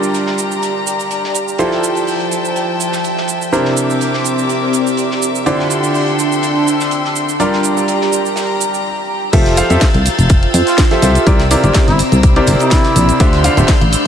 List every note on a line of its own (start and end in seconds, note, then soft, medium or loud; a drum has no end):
0.00 1.56 G3 medium
0.00 0.43 D4 medium
0.00 1.56 D4 medium
0.00 1.56 F4 medium
0.00 1.56 G4 medium
0.00 1.57 G4 medium
0.00 2.35 G4 medium
0.00 1.56 A#4 medium
0.00 1.56 D5 medium
0.00 2.37 D5 medium
0.00 1.57 A#5 medium
0.00 0.43 E6 loud
0.00 shaker soft
0.14 closed hi-hat medium
0.14 shaker soft
0.27 snare medium
0.38 closed hi-hat medium
0.38 shaker medium
0.51 shaker soft
0.63 closed hi-hat medium
0.63 shaker soft
0.87 closed hi-hat medium
0.87 shaker medium
0.99 closed hi-hat soft
0.99 shaker soft
1.11 closed hi-hat medium
1.11 shaker soft
1.24 snare soft
1.34 closed hi-hat medium
1.34 shaker medium
1.48 shaker soft
1.58 3.50 F3 medium
1.58 3.53 F3 medium
1.58 3.50 E4 medium
1.58 3.50 F4 medium
1.58 3.50 G4 medium
1.58 3.50 A4 medium
1.58 3.50 C5 medium
1.58 7.36 E5 medium
1.58 3.51 G5 medium
1.58 3.51 A5 medium
1.58 closed hi-hat medium
1.58 shaker soft
1.71 snare soft
1.79 4.30 C5 medium
1.83 closed hi-hat medium
1.83 shaker medium
1.95 closed hi-hat soft
1.95 shaker soft
2.07 open hi-hat medium
2.07 shaker soft
2.20 closed hi-hat soft
2.31 4.30 G5 medium
2.31 closed hi-hat medium
2.31 shaker medium
2.45 shaker soft
2.56 closed hi-hat medium
2.56 shaker soft
2.80 closed hi-hat medium
2.80 shaker medium
2.92 snare medium
2.92 shaker soft
3.04 closed hi-hat medium
3.04 shaker soft
3.17 snare soft
3.28 closed hi-hat medium
3.28 shaker medium
3.42 shaker soft
3.52 5.43 C3 medium
3.52 5.44 C4 medium
3.52 6.24 C4 medium
3.52 5.43 D4 medium
3.52 5.43 E4 medium
3.52 5.43 G4 medium
3.52 5.43 A#4 medium
3.52 5.44 A#4 medium
3.52 5.43 C5 medium
3.52 5.44 D6 medium
3.52 closed hi-hat medium
3.52 shaker soft
3.65 snare soft
3.76 closed hi-hat medium
3.76 shaker medium
3.89 6.24 G4 medium
3.89 shaker soft
4.01 closed hi-hat medium
4.01 shaker soft
4.08 6.24 D5 medium
4.13 snare soft
4.24 closed hi-hat medium
4.24 shaker medium
4.38 shaker soft
4.49 closed hi-hat medium
4.49 shaker soft
4.73 closed hi-hat medium
4.73 shaker medium
4.87 closed hi-hat soft
4.87 shaker soft
4.97 closed hi-hat medium
4.97 shaker soft
5.11 snare soft
5.22 closed hi-hat medium
5.22 shaker medium
5.35 shaker soft
5.46 7.37 D3 medium
5.46 7.38 D4 medium
5.46 8.17 D4 medium
5.46 7.37 E4 medium
5.46 7.37 F4 medium
5.46 7.37 G4 medium
5.46 7.38 A4 medium
5.46 7.37 C5 medium
5.46 7.37 D5 medium
5.46 7.38 G5 medium
5.46 7.38 C6 medium
5.46 closed hi-hat medium
5.46 shaker soft
5.59 snare soft
5.70 closed hi-hat medium
5.70 shaker medium
5.83 closed hi-hat soft
5.83 shaker soft
5.94 open hi-hat medium
5.94 shaker soft
6.01 8.17 E6 medium
6.08 closed hi-hat soft
6.19 closed hi-hat medium
6.19 shaker medium
6.32 shaker soft
6.43 closed hi-hat medium
6.43 shaker soft
6.67 closed hi-hat medium
6.67 shaker medium
6.80 snare medium
6.80 shaker soft
6.91 closed hi-hat medium
6.91 shaker soft
7.05 snare soft
7.15 closed hi-hat medium
7.15 shaker medium
7.29 shaker soft
7.40 8.85 G3 medium
7.40 8.85 D4 medium
7.40 8.85 F4 medium
7.40 8.85 G4 medium
7.40 9.31 G4 medium
7.40 8.85 A#4 medium
7.40 8.85 D5 medium
7.40 9.31 A#5 medium
7.40 closed hi-hat medium
7.40 shaker soft
7.53 snare soft
7.63 8.85 D5 medium
7.63 closed hi-hat medium
7.63 shaker medium
7.77 shaker soft
7.88 closed hi-hat medium
7.88 shaker soft
8.01 snare medium
8.12 closed hi-hat medium
8.12 shaker medium
8.26 shaker soft
8.36 snare medium
8.36 open hi-hat medium
8.36 shaker soft
8.60 closed hi-hat medium
8.60 shaker medium
8.74 closed hi-hat soft
8.74 shaker soft
9.33 9.62 F1 loud
9.33 9.55 F3 loud
9.33 9.55 F4 medium
9.33 11.27 F4 medium
9.33 9.55 G4 medium
9.33 9.55 A4 medium
9.33 9.55 C5 medium
9.33 9.55 E5 loud
9.33 11.25 F5 medium
9.33 14.07 E6 medium
9.33 11.25 G6 medium
9.33 11.25 A6 medium
9.33 kick loud
9.33 closed hi-hat medium
9.33 crash loud
9.33 shaker soft
9.46 snare soft
9.46 closed hi-hat soft
9.56 9.68 F3 medium
9.56 9.68 F4 medium
9.56 9.68 G4 medium
9.56 9.68 A4 medium
9.56 9.68 C5 medium
9.56 12.05 C5 medium
9.56 9.68 F5 loud
9.56 closed hi-hat medium
9.56 open hi-hat loud
9.56 shaker medium
9.70 9.77 F2 medium
9.70 9.83 F3 medium
9.70 9.83 F4 medium
9.70 9.83 G4 medium
9.70 9.83 A4 medium
9.70 9.83 C5 medium
9.70 9.83 E5 loud
9.70 closed hi-hat soft
9.70 shaker soft
9.74 12.05 G5 medium
9.81 kick loud
9.81 snare loud
9.81 closed hi-hat medium
9.81 open hi-hat medium
9.81 shaker soft
9.94 10.09 C2 medium
9.94 closed hi-hat soft
10.06 closed hi-hat medium
10.06 open hi-hat medium
10.06 shaker medium
10.19 10.47 F1 medium
10.19 closed hi-hat soft
10.19 shaker soft
10.29 kick loud
10.29 closed hi-hat medium
10.29 closed hi-hat loud
10.29 shaker soft
10.43 closed hi-hat soft
10.54 10.62 F2 loud
10.54 closed hi-hat medium
10.54 open hi-hat loud
10.54 shaker medium
10.67 10.79 F4 medium
10.67 snare medium
10.67 closed hi-hat soft
10.67 shaker soft
10.78 kick loud
10.78 snare loud
10.78 closed hi-hat medium
10.78 closed hi-hat loud
10.78 shaker soft
10.91 11.01 F3 medium
10.91 11.01 F4 medium
10.91 11.01 G4 medium
10.91 11.01 A4 medium
10.91 11.01 C5 medium
10.91 11.01 E5 medium
10.91 snare soft
10.91 closed hi-hat soft
11.02 11.18 C2 medium
11.02 11.24 F4 medium
11.02 11.24 G4 medium
11.02 11.24 A4 medium
11.02 11.24 C5 medium
11.02 11.24 E5 loud
11.02 closed hi-hat medium
11.02 open hi-hat medium
11.02 shaker medium
11.15 closed hi-hat soft
11.15 shaker soft
11.27 11.56 C2 loud
11.27 11.41 C3 loud
11.27 13.98 C4 medium
11.27 11.41 E4 medium
11.27 11.41 G4 medium
11.27 11.41 A#4 medium
11.27 11.41 C5 medium
11.27 13.18 C5 medium
11.27 11.41 D5 loud
11.27 13.18 A#5 medium
11.27 13.18 D6 medium
11.27 kick loud
11.27 closed hi-hat loud
11.27 closed hi-hat medium
11.27 shaker soft
11.39 snare soft
11.39 closed hi-hat soft
11.51 11.62 C3 medium
11.51 11.62 E4 medium
11.51 11.62 G4 medium
11.51 13.98 G4 loud
11.51 11.62 A#4 medium
11.51 11.62 C5 medium
11.51 11.62 D5 loud
11.51 closed hi-hat medium
11.51 open hi-hat loud
11.51 shaker medium
11.64 11.71 G1 medium
11.64 11.85 C3 medium
11.64 11.85 E4 medium
11.64 11.85 G4 medium
11.64 11.85 A#4 medium
11.64 11.85 C5 medium
11.64 11.85 D5 medium
11.64 closed hi-hat soft
11.64 shaker soft
11.74 kick loud
11.74 snare loud
11.74 closed hi-hat medium
11.74 closed hi-hat loud
11.74 shaker soft
11.88 12.02 G1 medium
11.88 12.00 E4 loud
11.88 snare medium
11.88 closed hi-hat soft
11.99 closed hi-hat medium
11.99 open hi-hat medium
11.99 shaker medium
12.04 13.98 D5 medium
12.12 12.41 C2 medium
12.12 closed hi-hat soft
12.12 shaker soft
12.23 kick loud
12.23 closed hi-hat medium
12.23 shaker soft
12.36 13.18 C3 loud
12.36 13.17 E4 medium
12.36 13.18 G4 medium
12.36 13.18 A#4 medium
12.36 13.18 C5 medium
12.36 13.18 D5 loud
12.36 closed hi-hat soft
12.47 12.55 G1 loud
12.47 closed hi-hat medium
12.47 open hi-hat loud
12.47 shaker medium
12.59 13.25 E4 loud
12.59 closed hi-hat soft
12.59 shaker soft
12.71 kick loud
12.71 snare loud
12.71 closed hi-hat medium
12.71 shaker soft
12.73 snare loud
12.84 snare medium
12.84 closed hi-hat soft
12.96 13.11 A#1 medium
12.96 closed hi-hat medium
12.96 open hi-hat loud
12.96 shaker medium
13.09 closed hi-hat soft
13.09 shaker soft
13.20 13.49 D2 loud
13.20 13.42 D3 loud
13.20 14.07 D4 loud
13.20 13.42 F4 medium
13.20 13.42 G4 loud
13.20 13.42 C5 loud
13.20 14.07 D5 medium
13.20 13.42 D5 medium
13.20 13.42 E5 loud
13.20 14.07 C6 medium
13.20 14.07 F6 medium
13.20 14.07 G6 medium
13.20 kick loud
13.20 closed hi-hat loud
13.20 closed hi-hat medium
13.20 shaker soft
13.33 snare soft
13.33 closed hi-hat soft
13.44 13.55 D3 medium
13.44 13.55 F4 medium
13.44 13.55 G4 medium
13.44 13.55 C5 medium
13.44 13.55 D5 medium
13.44 13.55 F5 loud
13.44 closed hi-hat medium
13.44 open hi-hat loud
13.44 shaker medium
13.49 14.07 A3 loud
13.57 13.64 D1 medium
13.57 13.70 D3 medium
13.57 13.70 F4 medium
13.57 13.70 G4 medium
13.57 13.70 C5 medium
13.57 13.70 D5 medium
13.57 13.70 E5 loud
13.57 closed hi-hat soft
13.57 shaker soft
13.68 kick loud
13.68 snare loud
13.68 closed hi-hat medium
13.68 open hi-hat medium
13.68 shaker soft
13.81 13.96 A1 medium
13.81 closed hi-hat soft
13.93 closed hi-hat medium
13.93 open hi-hat loud
13.93 shaker medium